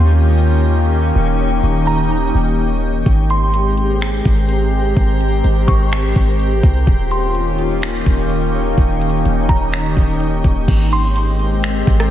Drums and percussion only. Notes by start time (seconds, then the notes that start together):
3.06 kick, closed hi-hat
3.30 closed hi-hat
3.54 closed hi-hat
3.77 closed hi-hat
4.01 finger snap, closed hi-hat
4.25 kick
4.49 closed hi-hat
4.97 kick, closed hi-hat
5.21 closed hi-hat
5.44 closed hi-hat
5.68 kick, closed hi-hat
5.92 finger snap, closed hi-hat
6.16 kick
6.39 closed hi-hat
6.63 kick
6.87 kick, closed hi-hat
7.11 closed hi-hat
7.35 closed hi-hat
7.58 closed hi-hat
7.82 finger snap, closed hi-hat
8.06 kick
8.30 closed hi-hat
8.78 kick, closed hi-hat
9.01 closed hi-hat
9.10 closed hi-hat
9.17 closed hi-hat
9.25 closed hi-hat
9.49 kick, closed hi-hat
9.57 closed hi-hat
9.65 closed hi-hat
9.72 finger snap, closed hi-hat
9.97 kick
10.20 closed hi-hat
10.44 kick
10.68 kick, closed hi-hat, crash
10.92 closed hi-hat
11.16 closed hi-hat
11.39 closed hi-hat
11.63 finger snap, closed hi-hat
11.87 kick
12.00 cross-stick